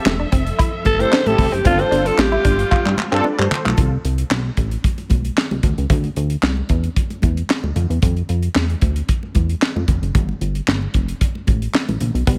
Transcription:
Already playing: F3 C4 G4 A4 E5
0.06 E1, muted clean electric guitar stroke, snare, clap, high conga
0.20 D4
0.32 F1 C4, kick, closed hi-hat
0.47 closed hi-hat
0.59 E4, kick, closed hi-hat
0.85 G1 A4, muted clean electric guitar stroke, kick, closed hi-hat, high conga
0.99 A3 C4 E4 G4 A4 C5, closed hi-hat
1.12 D4, snare, clap, muted conga
1.26 A1 C4 E4 G4 A4, muted clean electric guitar stroke, closed hi-hat, high conga
1.38 F1, kick, open hi-hat, low conga
1.52 F#1 C4 G4, closed hi-hat
1.64 G1 G3 C4 D4 F4 A4, kick, closed hi-hat, low conga
1.79 C5, closed hi-hat, muted conga
1.91 G1 D4, closed hi-hat
2.05 A4, muted clean electric guitar stroke, closed hi-hat
2.18 A1 G4, muted clean electric guitar stroke, snare, clap, high conga
2.32 E4, muted conga
2.45 G1 D4, kick, closed hi-hat
2.59 closed hi-hat
2.71 F4, kick, clap, muted conga
2.86 G2, clap, muted conga
2.97 muted clean electric guitar stroke, clap, high conga
3.11 G2 C4 D4 F4 A4, clap
3.24 D4 B4 D5, muted conga
3.39 G2 A4 C5, muted clean electric guitar stroke, clap, high conga
3.51 clap, low conga
3.65 B1 A3 F4 A4, clap
3.77 C2, kick, closed hi-hat, muted conga, low conga
4.04 C2, closed hi-hat
4.18 closed hi-hat
4.30 B1, snare, clap, muted conga, high conga
4.57 A1, kick, closed hi-hat
4.71 closed hi-hat
4.84 kick, closed hi-hat, muted conga
4.98 closed hi-hat, muted conga
5.10 B1, kick, closed hi-hat, high conga
5.25 closed hi-hat
5.37 snare, clap, muted conga
5.51 C2, closed hi-hat, muted conga, high conga
5.63 D2, kick, closed hi-hat, low conga
5.77 C#2, closed hi-hat
5.90 D2, kick, closed hi-hat, low conga
6.04 closed hi-hat, muted conga
6.16 D2, closed hi-hat
6.30 closed hi-hat
6.43 C2, snare, clap, muted conga, high conga
6.57 muted conga
6.69 E2, kick, closed hi-hat
6.84 closed hi-hat
6.96 kick, closed hi-hat, muted conga
7.10 closed hi-hat, muted conga
7.22 E2, kick, closed hi-hat, high conga
7.37 closed hi-hat
7.49 snare, clap, muted conga
7.63 D2, high conga
7.76 F2, closed hi-hat, low conga
7.90 E2, closed hi-hat
8.02 F2, kick, closed hi-hat, low conga
8.17 closed hi-hat
8.29 F2, closed hi-hat
8.43 closed hi-hat
8.55 E2, snare, clap, muted conga, high conga
8.69 closed hi-hat, muted conga
8.81 D2, kick, closed hi-hat
8.96 closed hi-hat
9.09 kick, closed hi-hat
9.23 muted conga
9.35 E2, kick, closed hi-hat, high conga
9.49 closed hi-hat
9.62 snare, clap
9.76 F2, muted conga, high conga
9.88 F1, kick, closed hi-hat, low conga
10.02 F#1, closed hi-hat
10.15 G1, kick, closed hi-hat, muted conga, low conga
10.29 muted conga
10.41 G1, closed hi-hat
10.55 closed hi-hat
10.68 G1, snare, clap, muted conga, high conga
10.82 muted conga
10.94 F1, kick, closed hi-hat
11.08 closed hi-hat
11.21 kick, closed hi-hat
11.35 muted conga
11.47 A1, kick, closed hi-hat, high conga
11.62 closed hi-hat
11.74 snare, clap, muted conga, high conga
11.88 A1, closed hi-hat, high conga
12.00 A#1, closed hi-hat, low conga
12.15 B1, closed hi-hat
12.27 C2 B3, kick, closed hi-hat, muted conga, low conga

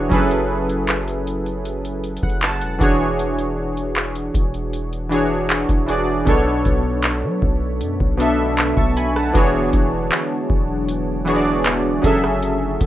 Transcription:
Already playing: E3 D4 F#4 G#4 C#5
0.09 F#1 F#3 C#4 E4 G#4 A4, kick, closed hi-hat
0.14 B4
0.31 closed hi-hat
0.69 closed hi-hat
0.88 clap, closed hi-hat
1.08 closed hi-hat
1.27 closed hi-hat
1.46 closed hi-hat
1.65 closed hi-hat
1.85 closed hi-hat
2.04 closed hi-hat
2.17 closed hi-hat
2.23 F#1 F#5, kick
2.29 closed hi-hat
2.42 F#5 A5, clap, closed hi-hat
2.61 E1 F#5, closed hi-hat
2.79 E1 E3 D4 F#4 G#4, kick, closed hi-hat
2.83 C#5
3.19 closed hi-hat
3.39 closed hi-hat
3.77 closed hi-hat
3.96 clap, closed hi-hat
4.15 closed hi-hat
4.34 E1, kick, closed hi-hat
4.54 closed hi-hat
4.73 closed hi-hat
4.93 closed hi-hat
5.09 E3 D4 F#4 G#4, closed hi-hat
5.14 C#5
5.50 clap, closed hi-hat
5.69 E1, kick, closed hi-hat
5.86 E3 D4 F#4 G#4, closed hi-hat
5.91 D5
6.25 B1 B2 D3 A3 B3 D4 A4, kick, closed hi-hat
6.30 C#5
6.65 B1, kick, closed hi-hat
7.03 clap, closed hi-hat
7.24 F#3
7.42 B1, kick
7.81 F#2, closed hi-hat
8.00 B1, kick
8.17 B2 B3 D4 A4, closed hi-hat
8.22 E5
8.58 clap, closed hi-hat
8.77 B1 A5 C#6, kick
8.97 G#5 B5, closed hi-hat
9.16 F#5 A5, cross-stick
9.33 E1 E3 F#3 G#3 B3 D4 F#4 G#4, kick, closed hi-hat
9.37 C#5
9.73 E1, kick, closed hi-hat
10.11 clap, closed hi-hat
10.50 E1, kick
10.89 closed hi-hat
11.25 E3 B3 D4 F#4 G#4, closed hi-hat
11.30 C#5
11.36 D5
11.65 clap, closed hi-hat
12.02 F#1 F#3 A3 C#4 E4 G#4 A4, kick, closed hi-hat
12.06 E5
12.24 cross-stick
12.43 closed hi-hat
12.81 F#1, kick, closed hi-hat

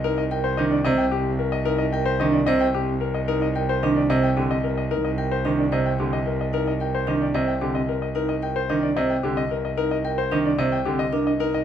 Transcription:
Already playing: C2
0.04 D#4 A#4
0.18 D#5
0.31 A#4 G5
0.44 C5
0.57 D#3 D4 D#5
0.71 D5
0.85 C3 C5 D#5
0.98 G5
1.12 C4 G4
1.39 A#4
1.52 D#5
1.65 D#4 A#4
1.78 D#5
1.92 A#4 G5
2.06 C5
2.20 D#3 D4 D#5
2.33 D5
2.46 C3 C5 D#5
2.61 G5
2.74 C4 G4
3.01 A#4
3.14 D#5
3.28 D#4 A#4
3.42 D#5
3.56 A#4 G5
3.69 C5
3.83 D#3 D4 D#5
3.96 D5
4.10 C3 C5 D#5
4.24 G5
4.37 D3 C4 G4
4.51 D#5
4.64 A#4
4.77 D#5
4.91 D#4 A#4
5.05 D#5
5.18 A#4 G5
5.32 C5
5.45 D#3 D4 D#5
5.59 D5
5.72 C3 C5 D#5
5.86 G5
5.99 D3 C4 G4
6.13 D#5
6.26 A#4
6.41 D#5
6.53 D#4 A#4
6.67 D#5
6.80 A#4 G5
6.95 C5
7.07 D#3 D4 D#5
7.21 D5
7.34 C3 C5 D#5
7.48 G5
7.61 D3 C4 G4
7.75 D#5
7.89 A#4
8.02 D#5
8.15 D#4 A#4
8.29 D#5
8.42 A#4 G5
8.56 C5
8.70 D#3 D4 D#5
8.83 D5
8.96 C3 C5 D#5
9.10 G5
9.23 D3 C4 G4
9.37 D#5
9.51 A#4
9.65 D#5
9.77 D#4 A#4
9.91 D#5
10.05 A#4 G5
10.18 C5
10.32 D#3 D4 D#5
10.45 D5
10.58 C3 C5 D#5
10.72 G5
10.85 D3 C4 G4
10.99 D#5
11.13 D4 A#4
11.27 D#5
11.40 D#4 A#4
11.54 D#5

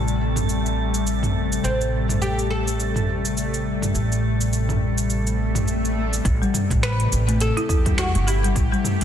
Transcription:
Already playing: A1 C3 G3 A3 E4 A4
0.08 shaker
0.36 mid tom, shaker
0.49 shaker
0.66 shaker
0.94 shaker
1.07 shaker
1.23 mid tom, shaker
1.52 shaker
1.63 A1 C4, shaker
1.81 shaker
2.09 mid tom, shaker
2.22 G4, shaker
2.39 shaker
2.50 A4
2.68 shaker
2.80 shaker
2.96 mid tom, shaker
3.25 shaker
3.37 shaker
3.54 shaker
3.82 mid tom, shaker
3.94 A1, shaker
4.12 shaker
4.41 shaker
4.53 shaker
4.69 mid tom, shaker
4.98 shaker
5.10 swell, shaker
5.27 shaker
5.55 mid tom, shaker
5.68 shaker
5.85 shaker
6.13 shaker
6.25 A1 C3 A3 G4, kick, closed hi-hat, shaker
6.42 G3, shaker
6.54 mid tom, shaker
6.70 A1, kick, closed hi-hat, shaker
6.83 B4, finger snap, closed hi-hat, shaker
7.00 closed hi-hat, shaker
7.12 A1, shaker
7.28 A3, closed hi-hat, shaker
7.40 A4, closed hi-hat, shaker
7.57 E4, closed hi-hat, shaker
7.69 E2 E4, kick, shaker
7.86 G3, kick, closed hi-hat, mid tom, shaker
7.98 F#4, finger snap, closed hi-hat, shaker
8.15 G1, closed hi-hat, shaker
8.27 E4 G4, shaker
8.44 G3, closed hi-hat, shaker
8.56 A1, kick, closed hi-hat, shaker
8.73 G3, shaker
8.84 mid tom, shaker
9.01 closed hi-hat

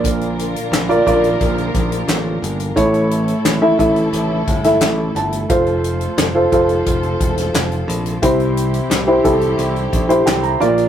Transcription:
Already playing: A#1 A#2 D3 F3 A#3 F4 A#4 D5
0.04 kick, closed hi-hat
0.21 closed hi-hat
0.39 closed hi-hat
0.56 closed hi-hat
0.72 A#1, snare, clap, closed hi-hat
0.89 F4 A#4 D5, closed hi-hat
1.06 A#1 F4 A#4 D5, kick, closed hi-hat
1.24 closed hi-hat
1.41 A#1, kick, closed hi-hat
1.58 closed hi-hat
1.74 A#1, kick, closed hi-hat
1.92 closed hi-hat
2.08 A1, snare, clap, closed hi-hat
2.42 G1, closed hi-hat
2.60 closed hi-hat
2.76 A1 A2 C#3 E3 A3 E4 A4 C#5, kick, closed hi-hat
2.94 closed hi-hat
3.11 closed hi-hat
3.28 closed hi-hat
3.45 A1, snare, clap, closed hi-hat
3.62 E4 A4 E5
3.78 A1 E4 A4 E5, kick, closed hi-hat
3.96 closed hi-hat
4.13 A1, closed hi-hat
4.47 G1, kick, closed hi-hat
4.64 E4 A4 E5, snare, closed hi-hat
4.81 A1 E5, snare, clap, closed hi-hat
5.15 G1 A5, closed hi-hat
5.32 closed hi-hat
5.49 F1 C3 F3 F4 A4 C5, kick, closed hi-hat
5.66 closed hi-hat
5.84 closed hi-hat
6.01 closed hi-hat
6.17 F1, snare, clap, closed hi-hat
6.35 F4 A4 C5
6.52 F1 F4 A4 C5, kick, closed hi-hat
6.69 closed hi-hat
6.86 F1, kick, closed hi-hat
7.03 closed hi-hat
7.20 E1, kick, closed hi-hat
7.37 snare, closed hi-hat
7.54 F1, snare, clap, closed hi-hat
7.71 closed hi-hat
7.88 A#1, closed hi-hat
8.06 closed hi-hat
8.22 C2 C3 E3 G3 E4 G4 C5, kick, closed hi-hat
8.40 closed hi-hat
8.57 closed hi-hat
8.74 closed hi-hat
8.90 C2, snare, clap, closed hi-hat
9.07 E4 G4 C5
9.24 C2 E4 G4 A4, kick, closed hi-hat
9.41 closed hi-hat
9.58 C2, closed hi-hat
9.76 closed hi-hat
9.93 A#1, kick, closed hi-hat
10.09 E4 G4 C5, closed hi-hat
10.26 C2 G5, snare, clap, closed hi-hat
10.43 A#5, closed hi-hat
10.60 A#1 A#2 D3 F3 A#3 D4 F4 A#4 D5, closed hi-hat
10.78 closed hi-hat

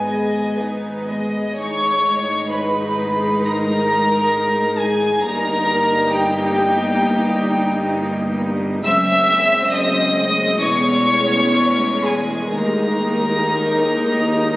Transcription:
Already playing: G#1 G#2 G#5
0.07 G#3 B3 G#4 D#5
0.58 B3 D#4 B4
1.10 G#3 B3 G#4 D#5
1.58 G#1 G#2 G#3 D#4 C#5 C#6
2.52 B4 B5
3.43 A#4 A#5
4.79 G#4 G#5
5.24 G1 G2 A#3 D#4 A#4 A#5
6.12 G4 G5
8.84 F#1 F#2 G#3 C4 E5 E6
9.73 D#5 D#6
10.62 E1 E2 C#4 C#5 C#6
12.04 G#4 G#5
12.50 D#2 D#4 A#4 A#5
14.53 G3

